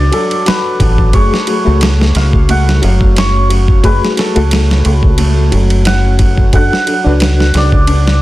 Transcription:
0.00 0.12 F#3 medium
0.00 1.15 D4 medium
0.00 1.16 D4 loud
0.00 1.15 F#4 medium
0.00 1.15 A4 medium
0.00 1.11 B4 loud
0.00 1.20 D5 loud
0.12 0.44 F#3 loud
0.12 3.06 A4 medium
0.12 ride medium
0.31 ride soft
0.46 0.78 F#4 medium
0.46 3.21 B4 medium
0.46 snare loud
0.46 ride medium
0.80 1.10 A1 medium
0.80 1.13 F#3 medium
0.80 kick loud
0.80 ride medium
0.98 kick loud
1.13 1.30 F#1 medium
1.13 1.61 A3 medium
1.13 1.62 F#4 medium
1.13 1.62 G#4 medium
1.13 3.18 C#5 loud
1.13 kick loud
1.13 ride medium
1.34 snare soft
1.47 1.79 F#3 medium
1.47 ride medium
1.65 2.12 C#2 medium
1.65 3.79 A3 loud
1.65 3.80 F#4 medium
1.65 3.80 A4 loud
1.81 snare loud
1.81 ride medium
2.01 snare soft
2.15 2.80 C#2 medium
2.15 2.56 F5 medium
2.15 snare soft
2.15 ride medium
2.33 kick loud
2.49 2.79 A3 medium
2.49 2.90 F#5 loud
2.49 ride medium
2.69 snare medium
2.82 3.81 F#1 medium
2.82 3.14 F#3 loud
2.82 5.06 F5 medium
2.82 ride medium
3.01 kick loud
3.16 3.48 C#4 medium
3.16 5.73 C#5 loud
3.16 snare loud
3.16 ride medium
3.49 4.14 F#3 medium
3.49 ride medium
3.68 kick loud
3.84 4.00 F#1 loud
3.84 4.31 A3 medium
3.84 4.31 F#4 medium
3.84 4.32 G#4 medium
3.84 6.58 B4 loud
3.84 kick loud
3.84 ride medium
4.05 snare soft
4.16 4.49 F#3 medium
4.16 7.12 A4 medium
4.16 snare medium
4.16 ride medium
4.35 4.82 C#2 medium
4.35 6.49 A3 medium
4.35 6.50 F#4 medium
4.35 6.50 A4 loud
4.35 ride soft
4.51 snare loud
4.51 ride medium
4.71 snare medium
4.85 5.49 C#2 medium
4.85 ride medium
5.03 kick medium
5.18 5.49 A3 medium
5.18 ride medium
5.52 6.50 F#1 medium
5.52 5.84 F#3 loud
5.52 ride medium
5.70 ride soft
5.85 6.18 C#4 medium
5.85 6.55 F#5 loud
5.85 snare loud
5.85 ride medium
6.19 6.53 F#3 medium
6.19 kick medium
6.19 ride medium
6.38 kick loud
6.53 6.69 F#1 loud
6.53 7.01 D4 medium
6.53 7.01 F#4 medium
6.53 7.01 A4 medium
6.53 8.22 F#5 loud
6.53 kick loud
6.53 ride medium
6.73 snare soft
6.86 7.19 F#3 medium
6.86 ride medium
7.04 7.52 C#2 medium
7.04 8.22 D4 loud
7.04 8.22 F#4 medium
7.04 8.22 B4 loud
7.20 snare loud
7.20 ride medium
7.40 snare soft
7.54 8.19 C#2 medium
7.54 8.22 D5 loud
7.54 snare soft
7.54 ride medium
7.72 kick loud
7.87 8.18 D4 medium
7.87 ride medium
8.07 snare medium

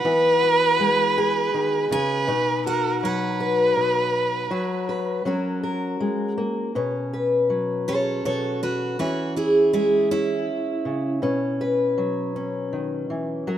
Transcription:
0.00 0.79 F#3 medium
0.00 1.17 B4 medium
0.00 1.88 B4 medium
0.00 1.92 F#5 medium
0.04 1.54 E3 medium
0.04 2.28 B3 medium
0.43 2.66 F#4 medium
0.80 2.24 G#3 medium
1.18 2.29 G#4 medium
1.54 1.91 D#3 medium
1.91 2.28 C#3 medium
1.91 2.63 B4 medium
1.91 2.67 G#5 loud
2.27 3.75 B2 medium
2.27 4.47 D#4 medium
2.66 4.51 F#4 medium
2.66 3.01 A#4 medium
2.66 3.04 F#5 medium
3.03 4.50 F#3 medium
3.03 5.23 B4 medium
3.03 5.98 F#5 medium
3.40 4.48 B4 medium
3.76 4.47 B2 medium
4.51 5.24 F#3 medium
4.51 5.22 F#4 medium
4.89 5.22 B4 medium
5.25 6.00 F#3 medium
5.25 6.71 C#4 medium
5.25 6.71 F#4 medium
5.25 5.62 A#4 medium
5.63 6.71 A#4 medium
6.00 6.37 G#3 medium
6.38 6.75 A#3 medium
6.75 8.24 B2 medium
6.75 7.88 C#4 medium
7.13 9.03 B4 medium
7.50 8.99 F#3 medium
7.88 8.99 C#4 medium
7.88 8.24 A4 medium
7.88 8.24 C#5 medium
8.25 8.95 B2 medium
8.25 8.96 F#4 medium
8.25 8.60 A4 medium
8.25 8.62 C#5 medium
8.63 8.97 F#4 medium
8.63 8.98 B4 medium
8.99 10.49 E3 medium
8.99 10.11 C#4 medium
8.99 9.34 F#4 medium
8.99 9.36 B4 medium
9.36 9.71 E4 medium
9.36 9.73 G#4 medium
9.73 11.19 G#3 medium
9.73 10.08 E4 medium
9.73 10.10 G#4 medium
10.11 11.22 C#4 medium
10.11 11.20 E4 medium
10.85 11.23 C#3 medium
11.22 13.42 B2 medium
11.22 12.35 C#4 medium
11.61 13.43 B4 medium
11.98 13.47 F#3 medium
12.36 13.58 C#4 medium
12.73 13.10 D#3 medium
13.10 13.48 E3 medium
13.47 13.58 F#3 medium
13.47 13.58 A#4 medium

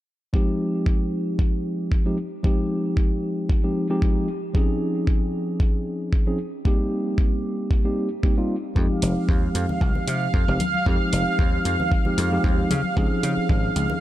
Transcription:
0.33 2.02 F3 medium
0.33 2.02 G#3 medium
0.33 2.03 C4 medium
0.33 2.03 D#4 medium
0.33 2.03 G4 medium
0.33 kick loud
0.86 kick loud
1.39 kick loud
1.92 kick loud
2.06 2.16 F3 medium
2.06 2.16 G#3 medium
2.06 2.16 C4 medium
2.06 2.17 D#4 medium
2.06 2.17 G4 medium
2.43 3.60 F3 medium
2.43 3.60 G#3 medium
2.43 3.60 C4 medium
2.43 3.61 D#4 medium
2.43 3.61 G4 medium
2.43 kick loud
2.97 kick loud
3.50 kick loud
3.63 3.87 F3 medium
3.63 3.87 G#3 medium
3.63 3.87 C4 medium
3.63 3.87 D#4 medium
3.63 3.87 G4 medium
3.90 4.27 F3 medium
3.90 4.27 G#3 medium
3.90 4.27 C4 medium
3.90 4.27 D#4 medium
3.90 4.27 G4 loud
4.02 kick loud
4.54 6.23 F3 medium
4.54 6.23 C4 medium
4.54 6.24 C#4 medium
4.54 6.24 D#4 medium
4.54 6.24 G#4 medium
4.54 kick loud
5.07 kick loud
5.60 kick loud
6.13 kick loud
6.26 6.37 F3 medium
6.26 6.37 C4 medium
6.26 6.37 C#4 medium
6.26 6.38 D#4 medium
6.26 6.38 G#4 medium
6.65 7.81 G3 medium
6.65 7.81 A#3 medium
6.65 7.82 C4 medium
6.65 7.82 D#4 medium
6.65 7.82 G4 medium
6.65 kick loud
7.18 kick loud
7.71 kick loud
7.84 8.07 G3 medium
7.84 8.08 A#3 medium
7.84 8.08 C4 medium
7.84 8.08 D#4 medium
7.84 8.08 G4 medium
8.23 8.34 G3 medium
8.23 8.34 A#3 medium
8.23 8.34 C4 medium
8.23 8.34 D#4 medium
8.23 8.34 G4 medium
8.23 kick loud
8.37 8.55 G3 medium
8.37 8.55 A#3 medium
8.37 8.55 C4 medium
8.37 8.55 D#4 medium
8.37 8.55 F4 medium
8.75 8.86 F2 medium
8.75 10.44 F3 medium
8.75 10.45 G#3 medium
8.75 10.45 C4 medium
8.75 10.45 D#4 medium
8.75 10.45 G4 medium
8.75 14.00 F5 medium
8.75 kick loud
9.02 9.12 F1 medium
9.02 open hi-hat medium
9.16 muted slap bass stroke soft
9.29 9.48 D#2 medium
9.29 kick loud
9.55 9.65 F2 medium
9.55 open hi-hat medium
9.69 low conga medium
9.81 9.91 C2 medium
9.81 kick loud
9.95 low conga medium
10.08 10.27 C3 medium
10.08 open hi-hat medium
10.34 10.44 F2 medium
10.34 kick loud
10.48 10.57 F1 medium
10.48 10.58 F3 medium
10.48 10.58 G#3 medium
10.48 10.59 C4 medium
10.48 10.59 D#4 medium
10.48 10.59 G4 medium
10.60 open hi-hat medium
10.60 high conga medium
10.60 low conga medium
10.74 high conga medium
10.86 10.96 F2 medium
10.86 12.02 F3 medium
10.86 12.02 G#3 medium
10.86 12.03 C4 medium
10.86 12.03 D#4 medium
10.86 12.03 G4 medium
10.86 kick loud
11.13 11.23 F1 medium
11.13 open hi-hat medium
11.39 11.58 D#2 medium
11.39 kick loud
11.65 11.75 F2 medium
11.65 open hi-hat medium
11.80 low conga medium
11.92 kick loud
12.05 12.29 F3 medium
12.05 12.29 G#3 medium
12.05 12.29 C4 medium
12.05 12.29 D#4 medium
12.05 12.29 G4 medium
12.05 low conga medium
12.18 12.37 F2 medium
12.18 open hi-hat medium
12.32 12.69 F3 medium
12.32 12.69 G#3 medium
12.32 12.69 C4 medium
12.32 12.69 D#4 medium
12.32 12.70 G4 loud
12.44 12.63 D#2 medium
12.44 kick loud
12.71 12.81 C#3 medium
12.71 open hi-hat medium
12.71 high conga medium
12.71 low conga medium
12.84 high conga medium
12.96 13.07 C#2 loud
12.96 14.00 F3 medium
12.96 14.00 C4 medium
12.96 14.00 C#4 medium
12.96 14.00 D#4 medium
12.96 14.00 G#4 loud
12.96 kick loud
13.23 13.33 C#3 medium
13.23 open hi-hat medium
13.37 muted slap bass stroke soft
13.49 13.69 G#1 medium
13.49 kick loud
13.76 13.86 C#2 medium
13.76 open hi-hat medium
13.90 low conga medium

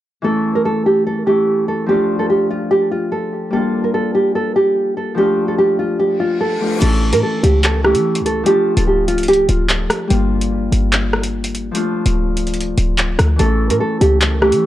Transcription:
0.22 1.25 E3 medium
0.22 1.27 A3 medium
0.22 1.27 C#4 medium
0.22 0.53 A4 medium
0.27 1.28 E4 medium
0.55 0.64 A#4 medium
0.65 0.83 A4 medium
0.86 1.03 G4 medium
1.07 1.24 A4 medium
1.26 1.94 E3 soft
1.26 1.88 A3 soft
1.26 1.96 C#4 soft
1.26 1.92 E4 medium
1.26 1.66 G4 medium
1.68 1.86 A4 medium
1.86 3.58 F3 medium
1.86 3.58 A3 medium
1.86 3.54 D4 medium
1.86 2.18 G4 medium
1.92 3.56 F4 medium
2.19 2.28 A4 medium
2.30 2.47 G4 medium
2.50 2.68 F4 medium
2.71 2.88 G4 loud
2.91 3.09 F4 medium
3.12 3.50 A4 medium
3.51 5.22 G3 medium
3.51 5.22 A#3 medium
3.51 5.18 D4 medium
3.51 3.82 A4 loud
3.56 5.20 F4 medium
3.84 3.93 A#4 medium
3.94 4.12 A4 medium
4.15 4.32 G4 medium
4.35 4.53 A4 medium
4.56 4.94 G4 medium
4.97 5.14 A4 medium
5.15 6.59 F3 medium
5.15 6.60 A3 medium
5.15 6.61 D4 medium
5.15 5.46 G4 loud
5.20 6.62 F4 medium
5.48 5.57 A4 medium
5.58 5.76 G4 medium
5.79 5.96 F4 medium
5.99 6.17 G4 medium
5.99 reverse cymbal medium
6.20 6.38 F4 medium
6.41 6.79 A4 medium
6.60 6.87 F3 soft
6.60 6.79 A3 soft
6.60 6.82 D4 soft
6.60 6.82 F4 medium
6.78 7.14 A1 loud
6.78 7.82 E3 medium
6.78 7.83 A3 medium
6.78 7.84 C#4 medium
6.78 7.11 A4 loud
6.78 closed hi-hat medium
6.78 crash medium
6.84 7.85 E4 medium
7.13 7.22 A2 loud
7.13 7.22 A#4 medium
7.13 closed hi-hat medium
7.23 7.40 A4 medium
7.43 7.96 C#2 loud
7.43 7.61 G4 medium
7.43 closed hi-hat medium
7.63 7.82 A4 medium
7.63 clap loud
7.63 closed hi-hat medium
7.83 8.51 E3 medium
7.83 8.45 A3 soft
7.83 8.53 C#4 soft
7.83 8.49 E4 medium
7.83 8.23 G4 medium
7.83 cross-stick medium
7.95 8.22 E3 loud
7.95 closed hi-hat medium
8.15 closed hi-hat medium
8.20 8.45 C#2 loud
8.26 8.43 A4 medium
8.26 closed hi-hat medium
8.43 10.16 F3 medium
8.43 10.15 A3 medium
8.43 10.11 D4 medium
8.43 8.75 G4 medium
8.43 closed hi-hat medium
8.49 10.13 F4 medium
8.77 9.20 D1 loud
8.77 8.86 A4 medium
8.77 closed hi-hat medium
8.87 9.05 G4 medium
9.08 9.25 F4 medium
9.08 closed hi-hat medium
9.18 9.47 C#1 loud
9.18 closed hi-hat medium
9.23 closed hi-hat medium
9.28 9.46 G4 loud
9.28 closed hi-hat medium
9.33 closed hi-hat medium
9.49 9.88 D1 loud
9.49 9.66 F4 medium
9.49 closed hi-hat medium
9.69 10.08 A4 medium
9.69 clap loud
9.69 closed hi-hat medium
9.90 cross-stick loud
9.90 closed hi-hat medium
10.08 10.70 G1 loud
10.08 11.80 G3 medium
10.08 11.79 A#3 medium
10.08 11.75 D4 medium
10.08 closed hi-hat medium
10.13 11.77 F4 medium
10.41 closed hi-hat medium
10.72 11.71 G1 loud
10.72 closed hi-hat medium
10.92 clap loud
10.92 closed hi-hat medium
11.13 cross-stick medium
11.23 closed hi-hat medium
11.44 closed hi-hat medium
11.55 closed hi-hat medium
11.71 13.44 F3 medium
11.71 13.37 A3 medium
11.71 13.46 D4 medium
11.71 closed hi-hat medium
11.77 13.42 F4 medium
12.06 12.75 D1 loud
12.06 closed hi-hat medium
12.37 closed hi-hat medium
12.47 closed hi-hat soft
12.54 closed hi-hat medium
12.61 closed hi-hat medium
12.78 13.17 D1 loud
12.78 closed hi-hat medium
12.98 clap loud
12.98 closed hi-hat medium
13.19 13.38 D2 loud
13.19 cross-stick loud
13.19 closed hi-hat medium
13.36 13.72 A1 loud
13.36 14.39 E3 medium
13.36 14.41 A3 medium
13.36 14.42 C#4 medium
13.36 13.68 A4 loud
13.36 closed hi-hat medium
13.41 14.43 E4 medium
13.70 13.80 A2 loud
13.70 13.79 A#4 medium
13.70 closed hi-hat medium
13.80 13.98 A4 medium
14.01 14.54 C#2 loud
14.01 14.19 G4 medium
14.01 closed hi-hat medium
14.21 14.39 A4 medium
14.21 clap loud
14.21 closed hi-hat medium
14.40 14.66 E3 medium
14.40 14.66 A3 soft
14.40 14.66 C#4 soft
14.40 14.66 E4 medium
14.40 14.66 G4 medium
14.40 cross-stick medium
14.52 14.66 E3 loud
14.52 closed hi-hat medium

